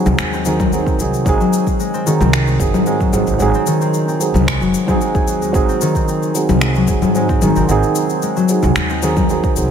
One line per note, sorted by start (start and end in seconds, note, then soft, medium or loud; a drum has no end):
0.00 0.45 D#3 loud
0.00 0.45 F#3 loud
0.00 0.51 F#3 loud
0.00 0.17 G#3 medium
0.00 0.33 C4 medium
0.00 0.45 C4 medium
0.00 0.46 D#4 medium
0.00 0.47 G#4 loud
0.06 0.18 C2 loud
0.06 low conga medium
0.06 shaker soft
0.19 0.82 D#2 medium
0.19 0.51 G#3 medium
0.19 finger snap medium
0.19 shaker soft
0.33 0.59 C4 loud
0.33 shaker soft
0.45 2.05 D#3 loud
0.45 0.69 F#3 medium
0.45 0.69 C4 medium
0.45 0.70 D#4 medium
0.45 0.70 G#4 medium
0.45 shaker medium
0.60 0.86 C4 loud
0.60 kick medium
0.60 low conga medium
0.60 shaker soft
0.72 0.96 F#3 medium
0.72 0.96 C4 medium
0.72 0.96 D#4 medium
0.72 0.97 G#4 medium
0.72 shaker soft
0.86 1.94 C4 medium
0.86 kick loud
0.86 shaker soft
0.99 1.21 C2 medium
0.99 1.23 F#3 medium
0.99 1.23 C4 medium
0.99 1.24 D#4 medium
0.99 1.24 G#4 medium
0.99 shaker medium
1.14 shaker soft
1.25 1.37 G#1 loud
1.25 2.03 F#3 loud
1.25 1.79 G#3 medium
1.25 2.03 C4 medium
1.25 2.04 D#4 medium
1.25 kick loud
1.25 shaker soft
1.29 2.05 G#4 loud
1.40 2.11 F#3 loud
1.40 shaker soft
1.53 shaker medium
1.67 kick medium
1.67 shaker soft
1.80 2.11 G#3 medium
1.80 shaker soft
1.94 2.20 C4 loud
1.94 shaker soft
2.06 3.66 D#3 loud
2.06 2.57 F#3 medium
2.06 2.58 C4 medium
2.06 2.58 D#4 medium
2.06 2.58 G#4 medium
2.06 shaker medium
2.20 2.56 C2 loud
2.20 2.46 C4 loud
2.20 low conga medium
2.20 shaker soft
2.33 finger snap medium
2.33 shaker soft
2.47 3.55 C4 medium
2.47 shaker soft
2.59 2.71 F#1 loud
2.59 2.83 F#3 medium
2.59 2.84 C4 medium
2.59 2.84 D#4 medium
2.59 2.84 G#4 medium
2.59 kick loud
2.59 shaker medium
2.74 3.09 G#2 medium
2.74 low conga medium
2.74 shaker soft
2.85 3.10 F#3 medium
2.85 3.39 G#3 medium
2.85 3.10 C4 medium
2.85 3.10 D#4 medium
2.85 3.11 G#4 medium
2.85 shaker soft
3.00 3.72 F#3 medium
3.00 kick loud
3.00 shaker soft
3.12 3.25 G#1 medium
3.12 3.37 F#3 medium
3.12 3.37 C4 medium
3.12 3.37 D#4 medium
3.12 3.38 G#4 medium
3.12 low conga medium
3.12 shaker medium
3.27 3.38 G#1 medium
3.27 shaker soft
3.38 3.51 G#1 loud
3.38 4.16 F#3 medium
3.38 3.72 G#3 medium
3.38 4.17 C4 medium
3.38 4.18 D#4 medium
3.38 4.18 G#4 loud
3.38 shaker soft
3.54 3.81 C4 loud
3.54 shaker soft
3.67 5.80 D#3 loud
3.67 shaker medium
3.81 4.08 C4 loud
3.81 shaker soft
3.94 shaker soft
4.08 4.88 C4 medium
4.08 shaker soft
4.19 4.71 F#3 medium
4.19 4.71 C4 medium
4.19 4.72 D#4 medium
4.19 4.72 G#4 medium
4.19 shaker medium
4.34 4.56 C2 loud
4.34 low conga medium
4.34 shaker soft
4.47 4.99 G#3 medium
4.47 finger snap medium
4.47 kick medium
4.47 shaker soft
4.61 4.71 F#1 loud
4.61 5.86 F#3 loud
4.61 shaker soft
4.74 shaker medium
4.87 5.50 F#3 loud
4.87 5.51 C4 medium
4.87 5.68 C4 loud
4.87 5.52 D#4 medium
4.87 5.53 G#4 loud
4.87 kick loud
4.87 low conga medium
4.87 shaker soft
5.01 5.41 G#3 medium
5.01 shaker soft
5.15 5.50 D#2 medium
5.15 7.42 G#4 medium
5.15 kick loud
5.15 shaker soft
5.28 7.71 F#4 medium
5.28 shaker medium
5.42 5.53 G#3 medium
5.42 shaker soft
5.52 5.66 G#1 loud
5.52 6.31 F#3 loud
5.52 5.86 G#3 medium
5.52 6.31 C4 medium
5.52 6.32 D#4 medium
5.52 6.32 G#4 loud
5.52 kick loud
5.52 shaker soft
5.69 5.95 C4 loud
5.69 shaker soft
5.81 7.41 D#3 loud
5.81 shaker medium
5.95 6.08 C4 loud
5.95 kick medium
5.95 shaker soft
6.08 7.29 C4 medium
6.08 shaker soft
6.23 shaker soft
6.34 6.86 F#3 medium
6.34 6.86 C4 medium
6.34 6.86 D#4 medium
6.34 6.87 G#4 medium
6.34 shaker medium
6.49 6.84 C2 loud
6.49 low conga medium
6.49 shaker soft
6.61 7.15 G#3 medium
6.61 finger snap medium
6.61 shaker soft
6.75 7.47 F#3 loud
6.75 shaker soft
6.87 7.00 F#1 medium
6.87 7.12 F#3 medium
6.87 7.12 C4 medium
6.87 7.12 D#4 medium
6.87 7.12 G#4 medium
6.87 kick loud
6.87 shaker medium
7.02 7.38 G#2 medium
7.02 low conga medium
7.02 shaker soft
7.15 7.39 F#3 medium
7.15 7.47 G#3 medium
7.15 7.39 C4 medium
7.15 7.39 D#4 medium
7.15 7.40 G#4 medium
7.15 shaker soft
7.29 7.56 C4 loud
7.29 kick loud
7.29 shaker soft
7.41 7.53 G#1 medium
7.41 9.01 D#3 loud
7.41 7.65 F#3 medium
7.41 7.66 C4 medium
7.41 7.66 D#4 medium
7.41 7.66 G#4 medium
7.41 low conga medium
7.41 shaker medium
7.56 7.66 G#1 medium
7.56 7.69 C4 loud
7.56 shaker soft
7.67 7.80 G#1 loud
7.67 8.45 F#3 loud
7.67 8.46 C4 medium
7.67 8.90 C4 medium
7.67 8.47 D#4 medium
7.67 8.47 G#4 loud
7.67 shaker soft
7.83 shaker soft
7.95 shaker medium
8.10 shaker soft
8.22 8.75 G#3 medium
8.22 shaker soft
8.37 9.08 F#3 medium
8.37 shaker soft
8.49 9.00 F#3 medium
8.49 9.00 C4 medium
8.49 9.01 D#4 medium
8.49 9.01 G#4 medium
8.49 shaker medium
8.63 8.75 C2 loud
8.63 low conga medium
8.63 shaker soft
8.76 9.39 D#2 medium
8.76 9.08 G#3 medium
8.76 finger snap medium
8.76 shaker soft
8.90 9.17 C4 loud
8.90 shaker soft
9.02 9.71 D#3 loud
9.02 9.26 F#3 medium
9.02 9.26 C4 medium
9.02 9.27 D#4 medium
9.02 9.27 G#4 medium
9.02 shaker medium
9.17 9.30 C4 loud
9.17 kick loud
9.17 low conga medium
9.17 shaker soft
9.29 9.53 F#3 medium
9.29 9.53 C4 medium
9.29 9.71 C4 medium
9.29 9.54 D#4 medium
9.29 9.54 G#4 loud
9.29 shaker soft
9.44 kick loud
9.44 shaker soft
9.55 9.71 C2 medium
9.55 9.71 F#3 medium
9.55 9.71 C4 medium
9.55 9.71 D#4 medium
9.55 9.71 G#4 medium
9.55 shaker medium